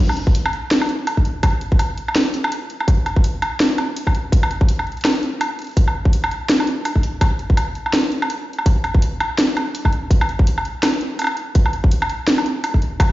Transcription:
0.09 low woodblock
0.17 closed hi-hat
0.27 kick
0.35 closed hi-hat
0.46 low woodblock
0.53 closed hi-hat
0.71 snare, closed hi-hat
0.82 low woodblock
0.89 closed hi-hat
1.07 closed hi-hat, low woodblock
1.17 kick
1.25 closed hi-hat
1.43 kick, closed hi-hat, low woodblock
1.61 closed hi-hat
1.72 kick
1.79 closed hi-hat, low woodblock
1.98 closed hi-hat
2.08 low woodblock
2.16 snare, closed hi-hat
2.34 closed hi-hat
2.44 low woodblock
2.52 closed hi-hat
2.70 closed hi-hat
2.80 low woodblock
2.88 kick, closed hi-hat
3.06 closed hi-hat, low woodblock
3.16 kick
3.24 closed hi-hat
3.42 closed hi-hat, low woodblock
3.60 snare, closed hi-hat
3.78 closed hi-hat, low woodblock
3.97 closed hi-hat
4.07 kick, low woodblock
4.15 closed hi-hat
4.32 kick, closed hi-hat
4.43 low woodblock
4.51 closed hi-hat
4.61 kick
4.69 closed hi-hat
4.79 low woodblock
4.87 closed hi-hat
4.92 closed hi-hat
4.97 closed hi-hat
5.01 snare, closed hi-hat
5.05 closed hi-hat, low woodblock
5.23 closed hi-hat
5.41 closed hi-hat, low woodblock
5.59 closed hi-hat
5.62 closed hi-hat
5.64 closed hi-hat
5.67 closed hi-hat
5.69 closed hi-hat
5.71 closed hi-hat
5.73 closed hi-hat
5.75 kick, closed hi-hat
5.77 closed hi-hat
5.88 low woodblock
6.05 kick
6.13 closed hi-hat
6.24 low woodblock
6.31 closed hi-hat
6.49 snare, closed hi-hat
6.60 low woodblock
6.67 closed hi-hat
6.85 closed hi-hat, low woodblock
6.96 kick
7.03 closed hi-hat
7.21 kick, closed hi-hat, low woodblock
7.39 closed hi-hat
7.50 kick
7.57 closed hi-hat, low woodblock
7.75 closed hi-hat
7.86 low woodblock
7.93 snare, closed hi-hat
8.12 closed hi-hat
8.22 low woodblock
8.30 closed hi-hat
8.53 closed hi-hat
8.59 low woodblock
8.66 kick, closed hi-hat
8.84 closed hi-hat, low woodblock
8.95 kick
9.02 closed hi-hat
9.20 closed hi-hat, low woodblock
9.38 snare, closed hi-hat
9.57 closed hi-hat, low woodblock
9.75 closed hi-hat
9.85 kick, low woodblock
9.93 closed hi-hat
10.11 kick, closed hi-hat
10.21 low woodblock
10.29 closed hi-hat
10.39 kick
10.47 closed hi-hat
10.58 low woodblock
10.65 closed hi-hat
10.83 snare, closed hi-hat, low woodblock
11.01 closed hi-hat
11.19 closed hi-hat, low woodblock
11.22 low woodblock
11.24 low woodblock
11.27 low woodblock
11.37 closed hi-hat
11.55 kick, closed hi-hat
11.66 low woodblock
11.73 closed hi-hat
11.84 kick
11.91 closed hi-hat
12.02 low woodblock
12.09 closed hi-hat
12.28 snare, closed hi-hat
12.38 low woodblock
12.46 closed hi-hat
12.64 closed hi-hat, low woodblock
12.74 kick
12.82 closed hi-hat
13.00 kick, closed hi-hat, low woodblock

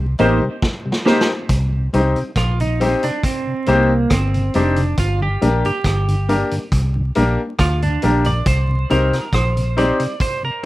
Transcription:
Already playing: C2
0.19 A1 A#3 C4 D#4 G4 A#4 C5, closed hi-hat
0.42 C3 G3
0.62 kick, snare
0.86 C3 G3
0.92 snare
1.05 A#3 C4 D#4 G4 A#4 C5, snare
1.21 snare
1.49 C2, kick, closed hi-hat
1.73 C3
1.93 C2 G3 C4 D#4 G4 C5, closed hi-hat
2.16 C3, closed hi-hat
2.36 A#1 F4, kick, cross-stick, closed hi-hat
2.60 C3 D#4, closed hi-hat
2.80 G3 C4 D#4 G4 C5, closed hi-hat
3.03 C3 D4, closed hi-hat
3.23 C4, kick, closed hi-hat
3.47 C3
3.66 C2 G3 A#3 C4 D#4 G4 C5, closed hi-hat
4.10 G1 C4, kick, cross-stick, closed hi-hat
4.34 C3, closed hi-hat
4.54 F1 G3 C4 D4 D#4 G4 C5, closed hi-hat
4.76 C3, closed hi-hat
4.97 G1 F4, kick, closed hi-hat
5.21 G2 D3 G4
5.41 A#1 G3 A#3 D4 G4 A#4, closed hi-hat
5.65 G2 D3 G4, closed hi-hat
5.84 G1, kick, cross-stick, closed hi-hat
6.08 G2 D3, closed hi-hat
6.29 G3 A#3 D4 G4 A#4, closed hi-hat
6.51 G2 D3, closed hi-hat
6.72 C2, kick, closed hi-hat
6.96 G2 D3
7.15 A#1 G3 A#3 D4 G4 A#4, closed hi-hat
7.59 D2 F4, kick, cross-stick, closed hi-hat
7.82 G2 D3 D4, closed hi-hat
8.02 A#1 G3 A#3 D4 G4 A#4, closed hi-hat
8.24 G2 D3 D5, closed hi-hat
8.46 C2 C5, kick, closed hi-hat
8.69 C3
8.90 C2 G3 C4 D#4 G4 A#4 C5, closed hi-hat
9.13 C3, cross-stick, closed hi-hat
9.33 A#1 C5, kick, cross-stick, closed hi-hat
9.57 C3, closed hi-hat
9.77 G3 C4 D#4 G4 C5 D5, closed hi-hat
10.00 C3, closed hi-hat
10.20 C5, kick, closed hi-hat
10.43 C3 A#4

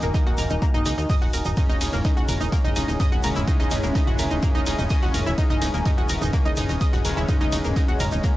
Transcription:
Already playing: D#3 A#3 D#4 F#4 A#4 D#5 F#5 G#5 A#5
0.02 D#1 A#3, closed hi-hat, mid tom, shaker
0.14 D#4, kick, snare, closed hi-hat, shaker
0.26 D#1 F#4, snare
0.37 D#1 A#4, closed hi-hat, mid tom, open hi-hat, shaker
0.50 D#1 D#4, shaker
0.62 A#3, kick, closed hi-hat, shaker
0.74 D#1 D#4, mid tom
0.86 C#2 D#4, closed hi-hat, open hi-hat, shaker
0.98 D#2 D#4, closed hi-hat, shaker
1.09 D#5, kick, snare, mid tom, open hi-hat, shaker
1.22 D#1 F#4, snare
1.33 D#1 A#4, closed hi-hat, open hi-hat, shaker
1.45 D#1 D#4, mid tom, shaker
1.56 C#3 G#3 C#4 D#4 E4 G#4 C#5, kick, closed hi-hat, mid tom, ride, shaker
1.69 D#1 D#4
1.81 D#1 D#4 G#4, closed hi-hat, open hi-hat, ride, shaker
1.93 D#1 A#3, mid tom, shaker
2.04 D#4, kick, snare, closed hi-hat, ride, shaker
2.17 D#1 F#4, closed hi-hat
2.23 E5
2.28 D#1 A#4, closed hi-hat, mid tom, open hi-hat, ride, shaker
2.40 D#1 D#4 G#5, shaker
2.52 A#3, kick, closed hi-hat, ride, shaker
2.64 D#1 D#4, mid tom
2.76 D#1 C#3 G#3 C#4 D#4, closed hi-hat, open hi-hat, ride, shaker
2.88 D#1 D#4, shaker
3.00 D#5, kick, snare, closed hi-hat, mid tom, ride, shaker
3.12 D#1 F#4
3.23 D#1 C#3 G#3 C#4 A#4, closed hi-hat, open hi-hat, ride, shaker
3.36 D#1 E4, mid tom, shaker
3.48 C#3 G#3 C#4 D#4, kick, closed hi-hat, ride, shaker
3.60 D#1 D#4
3.71 D#1 D#4, closed hi-hat, mid tom, open hi-hat, ride, shaker
3.83 D#1 A#3, closed hi-hat, shaker
3.95 D#4, kick, snare, closed hi-hat, ride, shaker
4.07 D#1 F#4, snare, mid tom
4.18 D#1 A#4, closed hi-hat, open hi-hat, ride, shaker
4.30 D#1 D#4, shaker
4.42 A#3, kick, closed hi-hat, mid tom, ride, shaker
4.55 D#1 D#4
4.66 D#1 D#4, closed hi-hat, open hi-hat, ride, shaker
4.78 D#1 D#4, closed hi-hat, mid tom, shaker
4.89 C#3 G#3 C#4 D#5, kick, snare, open hi-hat, ride, shaker
5.02 D#1 F#4, snare
5.14 D#1 A#4, closed hi-hat, mid tom, open hi-hat, ride, shaker
5.26 D#1 E4, shaker
5.38 C#3 C#4 D#4 B4, kick, closed hi-hat, ride, shaker
5.50 D#1 D#4, mid tom
5.61 D#1 D#4, closed hi-hat, open hi-hat, ride, shaker
5.74 D#1 A#3, shaker
5.86 D#4, kick, snare, closed hi-hat, mid tom, ride, shaker
5.98 D#1 F#4, closed hi-hat
6.09 D#1 A#4, closed hi-hat, open hi-hat, ride, shaker
6.21 D#1 D#4, mid tom, shaker
6.33 A#3, kick, closed hi-hat, ride, shaker
6.37 D#5
6.45 D#1 D#4
6.56 D#1 C#3 G#3 C#4 D#4, snare, closed hi-hat, mid tom, open hi-hat, ride, shaker
6.69 D#1 D#4, snare, closed hi-hat, shaker
6.80 D#5, kick, snare, closed hi-hat, ride, shaker
6.93 D#1 F#4, snare, closed hi-hat, mid tom
7.05 D#1 C#3 G#3 C#4 A#4, closed hi-hat, open hi-hat, ride, shaker
7.17 D#1 E4, shaker
7.28 C#3 G#3 C#4 D#4, kick, closed hi-hat, mid tom, ride, shaker
7.41 D#1 D#4
7.52 D#1 D#4, closed hi-hat, open hi-hat, ride, shaker
7.64 D#1 A#3, closed hi-hat, mid tom, shaker
7.76 D#4, kick, snare, closed hi-hat, ride, shaker
7.88 D#1 F#4, snare
8.00 D#1 A#4, closed hi-hat, mid tom, open hi-hat, ride, shaker
8.11 D#1 D#4, shaker
8.23 A#3, kick, closed hi-hat, ride, shaker

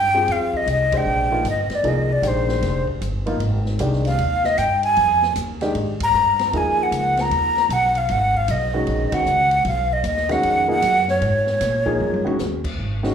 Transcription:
Already playing: G2 G5
0.14 C4 F4 G4 G#4
0.28 F2, ride
0.32 F5
0.53 D#5, kick
0.66 C2, hi-hat pedal, ride
0.72 D#5
0.92 G#3 D4 G4 C5, kick, ride
0.97 G5
1.05 A#1
1.31 F3 A#3 D#4 F4
1.44 G1, hi-hat pedal, ride
1.50 D#5
1.70 muted upright bass stroke, snare, ride
1.75 D5
1.83 C2 F3 A#3 D#4 G#4, ride
1.88 D#5
2.13 D5
2.22 A#1 D#3 G#3 D4 G4, hi-hat pedal, ride
2.27 C5
2.49 snare
2.62 F1, snare, ride
2.87 muted upright bass stroke, kick
3.01 G1, hi-hat pedal, ride
3.26 F3 A#3 D#4 F4, ride
3.40 G#1, ride
3.66 snare
3.79 C2 D#3 G#3 D4 G4, hi-hat pedal, ride
3.93 snare
4.05 F5, snare, ride
4.18 D#2, ride
4.44 D#5, snare
4.58 G2 G5, hi-hat pedal, ride
4.83 G#5, ride
4.97 F2, ride
5.22 snare
5.36 D#2, hi-hat pedal, ride
5.61 D#3 G#3 D4 G4, snare, ride
5.75 G#2, ride
6.00 A#5, kick, ride
6.14 G2, hi-hat pedal
6.39 snare, ride
6.53 D#2 F3 A#3 D#4 G#4, ride
6.57 G#5
6.83 F#5
6.91 C#2, hi-hat pedal, ride
6.96 F#5
7.17 A#5, snare, ride
7.30 D#2, ride
7.57 snare
7.69 B1 F#5, hi-hat pedal, ride
7.95 F5, ride
8.09 G#1 F#5, ride
8.34 F5, kick
8.48 B1 D#5, hi-hat pedal, ride
8.74 D#3 G#3 C#4 F#4
8.87 A#1, ride
9.12 D#3 G#3 C#4 F#4 F#5, muted upright bass stroke, kick, ride
9.26 C#2, hi-hat pedal
9.51 ride
9.65 B1 F5, ride
9.93 D#5
10.04 D#2 D#5, hi-hat pedal, ride
10.17 snare
10.29 D#3 G#3 C#4 F#4 F#5, snare, ride
10.43 F2, ride
10.68 F3 A#3 D#4 G#4 F#5
10.82 F#2, hi-hat pedal, ride
11.08 C#5, snare
11.21 G#2, ride
11.47 snare
11.61 A#2, snare, hi-hat pedal, ride
11.85 F3 A#3 D#4 G#4, kick
12.00 F#2, high tom
12.14 high tom
12.25 D#3 G#3 C#4 F#4, muted upright bass stroke, high tom
12.39 D#2, snare, hi-hat pedal
12.64 kick, crash
12.79 G#1
13.03 D#3 G#3 C#4 F#4, snare

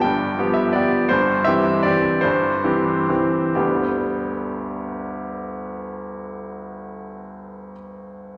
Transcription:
0.01 G1 G2 G5
0.39 F3 B3 G4
0.54 E5
0.73 F3 B3 G4 D5
1.09 G1 G2 C5
1.44 E3 C4 G4 E5
1.83 E3 C4 G4 D5
2.21 G1 G2 C5
2.64 E3 C4 G4
3.09 E3 C4 G4
3.55 G1 D2 G3 B3 D4 G4

